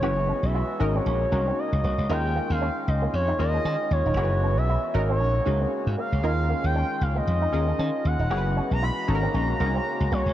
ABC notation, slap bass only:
X:1
M:4/4
L:1/16
Q:"Swing 16ths" 1/4=116
K:Ab
V:1 name="Slap bass" clef=bass
_G,,,3 _C,,2 z A,,,2 B,,,2 =C,,2 z D,, C,, D,, | E,,3 E,,2 z D,,2 F,,2 E,,2 E, z E,, E,,, | _G,,,3 _C,,2 z A,,,2 B,,,2 D,,2 z A,, z D,, | E,,3 E,,2 z D,,2 F,,2 E,,2 E, z E,, E,,, |
_G,,,3 _C,,2 z A,,,2 B,,,2 =C,,2 z D,, C,, D,, |]